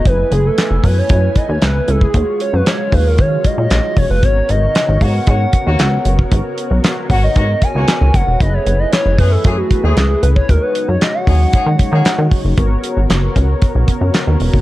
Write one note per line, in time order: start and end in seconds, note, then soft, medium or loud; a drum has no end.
0.05 0.24 F#1 loud
0.05 2.12 E3 medium
0.05 2.10 A3 medium
0.05 2.12 A3 medium
0.05 2.12 B3 medium
0.05 2.10 E4 medium
0.05 0.32 B4 loud
0.05 2.11 B4 medium
0.05 2.12 G#5 medium
0.05 2.10 G#5 medium
0.05 kick loud
0.05 closed hi-hat medium
0.31 0.50 F#1 loud
0.31 0.48 G#4 medium
0.31 closed hi-hat medium
0.46 0.86 A4 loud
0.58 snare loud
0.58 clap medium
0.58 closed hi-hat medium
0.71 0.80 F#1 medium
0.84 1.03 F#2 loud
0.84 0.99 B4 loud
0.84 kick medium
0.84 open hi-hat medium
0.98 1.38 C#5 medium
1.09 1.29 F#2 loud
1.09 kick loud
1.09 closed hi-hat medium
1.36 1.52 D#5 medium
1.36 kick medium
1.36 closed hi-hat medium
1.49 1.58 D#2 loud
1.49 1.65 C#5 medium
1.62 1.81 C#2 medium
1.62 1.91 B4 loud
1.62 snare loud
1.62 clap loud
1.62 closed hi-hat medium
1.88 2.07 C#2 medium
1.88 2.04 A4 medium
1.88 closed hi-hat medium
2.01 2.41 G#4 medium
2.01 kick medium
2.13 2.24 D#2 loud
2.13 8.36 C#3 medium
2.13 4.21 F#3 medium
2.13 4.19 G#3 medium
2.13 4.21 G#3 medium
2.13 4.19 F4 medium
2.13 4.19 F#4 medium
2.13 4.19 C#5 medium
2.13 4.21 F5 medium
2.13 kick loud
2.13 closed hi-hat medium
2.40 2.56 C#5 medium
2.40 closed hi-hat medium
2.53 2.63 F#2 medium
2.53 2.69 B4 medium
2.66 2.96 C#5 loud
2.66 snare loud
2.66 clap medium
2.66 closed hi-hat medium
2.92 3.20 D#2 medium
2.92 3.09 B4 medium
2.92 kick medium
2.92 open hi-hat medium
3.07 3.21 A#4 medium
3.18 3.37 D#3 loud
3.18 3.47 C#5 loud
3.18 kick loud
3.18 closed hi-hat medium
3.44 3.58 D#5 medium
3.44 kick medium
3.44 closed hi-hat medium
3.58 3.67 A#2 medium
3.58 3.99 D#5 loud
3.71 3.80 A#1 loud
3.71 snare loud
3.71 clap loud
3.71 closed hi-hat medium
3.97 4.06 F1 medium
3.97 4.10 C#5 loud
3.97 kick loud
3.97 open hi-hat medium
4.10 4.24 F#1 medium
4.10 4.25 B4 loud
4.22 4.42 G#1 loud
4.22 8.36 B3 medium
4.22 10.45 B3 medium
4.22 8.36 F#4 medium
4.22 8.36 A#4 medium
4.22 8.37 C#5 medium
4.22 4.51 C#5 loud
4.22 kick loud
4.22 closed hi-hat medium
4.49 4.68 G#1 loud
4.49 5.03 D#5 loud
4.49 closed hi-hat medium
4.75 snare loud
4.75 clap medium
4.75 closed hi-hat medium
4.89 4.98 G#1 loud
5.01 5.20 G#2 loud
5.01 5.12 A#3 medium
5.01 5.12 F#4 medium
5.01 5.12 C#5 medium
5.01 6.32 F#5 loud
5.01 kick medium
5.01 open hi-hat medium
5.27 5.46 G#2 loud
5.27 5.38 A#3 medium
5.27 5.38 F#4 medium
5.27 5.38 C#5 medium
5.27 kick loud
5.27 closed hi-hat medium
5.53 kick medium
5.53 closed hi-hat medium
5.66 5.76 D#2 loud
5.66 5.83 A#3 medium
5.66 5.83 F#4 medium
5.66 5.83 C#5 loud
5.79 5.98 C#2 loud
5.79 snare loud
5.79 clap loud
5.79 closed hi-hat medium
6.05 6.24 F#1 loud
6.05 closed hi-hat medium
6.19 kick medium
6.32 6.41 G#1 loud
6.32 kick loud
6.32 closed hi-hat medium
6.58 closed hi-hat medium
6.71 6.80 B1 medium
6.84 snare loud
6.84 clap medium
6.84 closed hi-hat medium
7.10 7.29 G#1 medium
7.10 7.21 A#3 medium
7.10 7.21 F#4 medium
7.10 7.21 C#5 medium
7.10 7.17 F#5 loud
7.10 kick medium
7.10 open hi-hat medium
7.24 7.64 D#5 loud
7.36 7.55 G#2 loud
7.36 7.47 A#3 medium
7.36 7.47 F#4 medium
7.36 7.47 C#5 medium
7.36 kick loud
7.36 closed hi-hat medium
7.62 8.16 G#5 loud
7.62 kick medium
7.62 closed hi-hat medium
7.75 7.85 C#2 medium
7.75 7.92 A#3 loud
7.75 7.92 F#4 medium
7.75 7.92 C#5 loud
7.88 snare loud
7.88 clap loud
7.88 closed hi-hat medium
8.01 8.11 C#2 medium
8.14 8.24 F#1 loud
8.14 8.42 F#5 loud
8.14 kick medium
8.14 closed hi-hat medium
8.27 8.37 E1 medium
8.40 8.59 F#1 loud
8.40 10.47 E3 medium
8.40 10.45 A3 medium
8.40 10.47 A3 medium
8.40 10.45 E4 medium
8.40 10.47 G#4 medium
8.40 10.45 G#4 medium
8.40 10.45 B4 medium
8.40 8.55 D#5 loud
8.40 kick loud
8.40 closed hi-hat medium
8.54 8.81 C#5 loud
8.66 8.85 F#1 loud
8.66 closed hi-hat medium
8.79 8.91 D#5 loud
8.92 9.20 C#5 loud
8.92 snare loud
8.92 clap medium
8.92 closed hi-hat medium
9.06 9.20 F#1 medium
9.18 9.37 F#2 loud
9.18 9.30 A3 medium
9.18 9.30 G#4 medium
9.18 9.33 B4 loud
9.18 9.30 C#5 medium
9.18 kick medium
9.18 open hi-hat medium
9.31 9.59 A4 medium
9.44 9.64 F#2 loud
9.44 9.56 A3 medium
9.44 9.56 G#4 medium
9.44 9.56 C#5 medium
9.44 kick loud
9.44 closed hi-hat medium
9.57 9.83 F#4 medium
9.71 kick medium
9.71 closed hi-hat medium
9.83 9.93 D#2 medium
9.83 10.00 A3 medium
9.83 10.20 G#4 loud
9.83 10.00 G#4 medium
9.83 10.00 C#5 loud
9.97 10.16 C#2 medium
9.97 snare loud
9.97 clap loud
9.97 closed hi-hat medium
10.23 10.42 C#2 medium
10.23 10.29 B4 medium
10.23 closed hi-hat medium
10.36 10.50 C#5 loud
10.36 kick medium
10.49 10.59 D#2 loud
10.49 12.56 C#3 medium
10.49 12.56 F#3 medium
10.49 12.53 G#3 medium
10.49 12.56 G#3 medium
10.49 12.54 D#4 medium
10.49 12.55 F#4 medium
10.49 12.54 F#4 medium
10.49 10.63 A#4 loud
10.49 12.54 C#5 medium
10.49 kick loud
10.49 closed hi-hat medium
10.62 10.89 B4 medium
10.75 closed hi-hat medium
10.88 10.98 F#2 loud
10.88 11.02 C#5 medium
11.01 11.16 D#5 loud
11.01 snare loud
11.01 clap medium
11.01 closed hi-hat medium
11.14 12.45 F#5 loud
11.27 11.46 D#2 medium
11.27 11.38 A#3 medium
11.27 11.38 G#4 medium
11.27 11.38 C#5 medium
11.27 kick medium
11.27 open hi-hat medium
11.53 11.64 A#3 medium
11.53 11.64 G#4 medium
11.53 11.64 C#5 medium
11.53 kick loud
11.53 closed hi-hat medium
11.66 11.76 D#3 loud
11.79 kick medium
11.79 closed hi-hat medium
11.92 12.02 D#3 loud
11.92 12.09 A#3 loud
11.92 12.09 G#4 medium
11.92 12.09 C#5 loud
12.05 snare loud
12.05 clap loud
12.05 closed hi-hat medium
12.18 12.28 D#3 loud
12.31 kick loud
12.31 open hi-hat medium
12.45 12.54 F#1 medium
12.57 12.77 G#1 loud
12.57 14.61 C#3 medium
12.57 14.61 B3 medium
12.57 14.61 F#4 medium
12.57 14.61 A#4 medium
12.57 14.61 C#5 medium
12.57 kick loud
12.57 closed hi-hat medium
12.84 closed hi-hat medium
12.97 13.06 G#1 medium
13.10 13.29 F#1 medium
13.10 snare loud
13.10 clap medium
13.10 closed hi-hat medium
13.36 13.55 C#2 medium
13.36 kick medium
13.36 closed hi-hat medium
13.62 kick loud
13.62 closed hi-hat medium
13.75 13.85 B1 medium
13.88 kick medium
13.88 closed hi-hat medium
14.01 14.11 F#2 medium
14.14 snare loud
14.14 clap medium
14.14 closed hi-hat medium
14.27 14.37 D#2 medium
14.40 14.50 E1 medium
14.40 open hi-hat medium
14.54 14.61 F#1 medium
14.54 kick medium